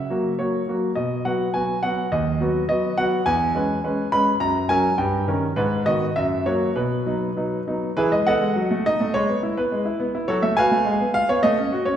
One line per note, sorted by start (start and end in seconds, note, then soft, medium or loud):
0.00 0.39 E5 medium
0.10 0.31 F#3 soft
0.10 0.31 A#3 soft
0.10 0.31 F#4 soft
0.39 0.60 F#3 soft
0.39 0.60 A#3 soft
0.39 0.60 F#4 soft
0.39 0.73 C#5 medium
0.68 0.89 F#3 soft
0.68 0.89 A#3 soft
0.68 0.89 F#4 soft
0.95 1.25 B2 medium
0.95 1.22 D#5 medium
1.25 1.46 F#3 soft
1.25 1.47 B3 soft
1.25 1.47 F#4 soft
1.25 1.54 F#5 medium
1.54 1.75 F#3 soft
1.54 1.75 B3 soft
1.54 1.76 F#4 soft
1.54 1.80 G#5 medium
1.83 2.04 F#3 soft
1.83 2.05 B3 soft
1.83 2.05 F#4 soft
1.83 2.12 F#5 medium
2.12 2.40 D#2 medium
2.12 2.67 D#5 medium
2.41 2.61 F#3 soft
2.41 2.62 B3 soft
2.41 2.62 F#4 soft
2.69 2.90 F#3 soft
2.69 2.90 B3 soft
2.69 2.90 F#4 soft
2.69 2.95 D#5 medium
2.98 3.19 F#3 soft
2.98 3.19 B3 medium
2.98 3.19 F#4 medium
2.98 3.27 F#5 medium
3.26 3.54 E2 medium
3.26 4.12 G#5 medium
3.55 3.76 G#3 soft
3.55 3.76 C#4 soft
3.55 3.76 B4 medium
3.84 4.05 G#3 soft
3.84 4.05 C#4 medium
3.84 4.05 B4 medium
4.12 4.33 G#3 medium
4.12 4.34 C#4 medium
4.12 4.34 B4 medium
4.12 4.29 B5 loud
4.40 4.69 F#2 medium
4.40 4.69 A#5 medium
4.69 4.91 F#3 medium
4.69 4.91 C#4 medium
4.69 4.91 A#4 medium
4.69 4.95 G#5 medium
4.98 5.26 G2 medium
4.98 5.24 G5 medium
5.28 5.49 D#3 medium
5.28 5.49 C#4 medium
5.28 5.49 A#4 medium
5.56 5.85 G#2 medium
5.56 5.86 B4 medium
5.86 6.07 D#3 medium
5.86 6.08 B3 soft
5.86 6.08 F#4 medium
5.86 6.04 D#5 medium
6.16 6.45 F#2 medium
6.16 6.43 E5 medium
6.46 6.68 F#3 soft
6.46 6.68 A#3 soft
6.46 6.69 F#4 medium
6.46 6.76 C#5 medium
6.76 7.06 B2 medium
6.76 7.62 B4 medium
7.06 7.28 F#3 soft
7.06 7.28 B3 soft
7.06 7.28 D#4 soft
7.37 7.58 F#3 soft
7.37 7.58 B3 soft
7.37 7.59 D#4 soft
7.67 7.89 F#3 soft
7.67 7.89 B3 soft
7.67 7.89 D#4 soft
7.97 8.11 E3 medium
7.97 8.11 E4 medium
7.97 8.11 G#4 medium
7.97 8.11 B4 medium
8.12 8.27 G#3 soft
8.12 8.26 D#5 medium
8.27 8.42 B3 medium
8.27 8.82 A4 medium
8.27 8.82 D#5 medium
8.27 8.85 F#5 medium
8.41 8.56 G#3 medium
8.56 8.70 F#3 medium
8.71 8.86 A3 medium
8.86 9.01 D#4 medium
8.86 9.11 D#5 medium
9.00 9.14 A3 medium
9.14 9.28 G#3 medium
9.14 9.39 C#5 medium
9.29 9.43 B3 medium
9.43 9.58 E4 medium
9.57 9.72 B3 medium
9.57 9.96 B4 medium
9.72 9.85 G#3 medium
9.85 10.00 E4 medium
10.00 10.15 B3 medium
10.15 10.29 E4 medium
10.28 10.42 F#3 medium
10.28 10.42 F#4 medium
10.28 10.42 A4 medium
10.28 10.42 C#5 medium
10.42 10.57 A3 medium
10.42 10.57 E5 medium
10.57 10.72 F#4 medium
10.57 11.10 B4 medium
10.57 11.10 F5 medium
10.57 11.09 G#5 loud
10.71 10.85 A3 medium
10.85 10.99 G#3 medium
11.00 11.15 B3 medium
11.14 11.29 F4 medium
11.14 11.28 F5 loud
11.29 11.43 B3 medium
11.29 11.43 C#5 medium
11.43 11.57 A3 medium
11.43 11.85 D#5 medium
11.58 11.72 C#4 medium
11.72 11.86 F#4 medium
11.85 11.97 C#4 soft
11.85 11.97 C#5 medium